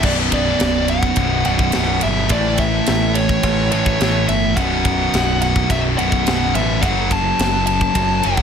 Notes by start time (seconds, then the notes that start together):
0.03 B0 B1 F#2 B2 D5, kick, crash
0.32 D5, kick, ride
0.60 B0, snare, ride
0.88 F#5, ride
1.03 kick
1.16 B0 B1 F#2 B2, kick, ride
1.45 B0 B1 F#2 B2 F#5, ride
1.59 kick
1.72 B0 B1 F#2 B2, snare, ride
2.01 G1 E5, ride
2.29 A1 A2 E3 A3 D5, kick, ride
2.58 E5, kick, ride
2.86 A1, snare, ride
3.15 C#5, ride
3.29 kick
3.43 A1 A2 E3 A3, kick, ride
3.72 A1 A2 E3 A3 C#5, ride
3.86 kick
4.00 A1 A2 E3 A3, snare, ride
4.28 G1 E5, ride
4.57 B0 B1 F#2 B2 F#5, kick, ride
4.85 kick, ride
5.14 B0, snare, ride
5.42 F#5, ride
5.56 kick
5.69 B0 B1 F#2 B2 E5, kick, ride
5.98 B0 B1 F#2 B2 F#5, ride
6.12 kick
6.26 B0 B1 F#2 B2, snare, ride
6.55 A1 E5, ride
6.82 F#1 F#2 C#3 F#3 F#5, kick, ride
7.11 A5, kick, ride
7.39 F#1, snare, ride
7.67 A5, ride
7.81 kick
7.94 F#1 F#2 C#3 F#3, kick, ride
8.22 F#1 F#3 F#5, ride
8.26 F#2 C#3
8.37 kick